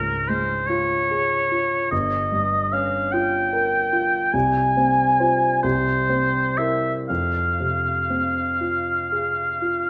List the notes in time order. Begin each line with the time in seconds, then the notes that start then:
Already playing: C#2 G#2 F4 G#4 A#4
0.28 G#3 C5
0.67 F4 C#5
1.11 G#4
1.52 F4
1.91 G1 D#5
2.32 G2
2.72 C#4 F5
3.12 F4 G5
3.53 A#4
3.93 F4
4.33 C2 G#5
4.77 C4
5.20 F4 C5
5.63 C2 C5
6.09 C4
6.57 E4 A#4 E5
7.09 F2 F5
7.60 C3
8.10 C4
8.61 F4
9.12 G#4
9.62 F4